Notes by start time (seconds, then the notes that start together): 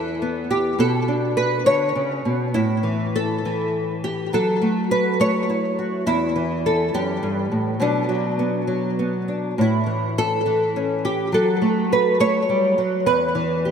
Already playing: E2 E3 E4 A4
0.22 B3
0.51 G4
0.79 B2 A4
1.08 D4
1.37 B4
1.66 D3 C#5
1.95 C#3
2.25 B2
2.54 A2 E4
2.83 E3
3.16 A4
3.45 E3
4.04 G4
4.33 F#3 A4
4.62 A3
4.91 B4
5.20 A3 C#5
5.50 E4
5.79 F#4
6.06 E2 E4
6.36 E3
6.66 A4
6.94 F#2 G4
7.23 G2
7.52 A2
7.80 B2 F#3 B3 D4
8.09 F#3
8.39 B3
8.67 F#3
8.99 B3
9.28 D4
9.58 A2 E4
9.86 E3
10.18 A4
10.46 E3
10.76 C#4
11.05 G4
11.32 F#3 A4
11.62 A3
11.92 B4
12.20 A3 C#5
12.49 G3
12.78 F#3
13.06 E2 B4
13.35 E3
13.65 G4